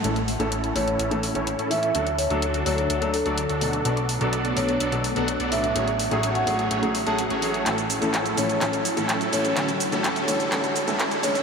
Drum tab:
HH |xxoxxxoxxxoxxxox|xxoxxxoxxxoxxxox|xxoxxxoxxxoxxxox|xxoxxxoxxxoxxxox|
SH |----------------|----------------|----------------|----------------|
CP |----------------|----------------|----------------|----------------|

HH |xxoxxxoxxxoxxxox|xxoxxxoxxxoxxxox|
SH |xxxxxxxxxxxxxxxx|xxxxxxxxxxxxxxxx|
CP |x---x---x---x---|x---x---x---x---|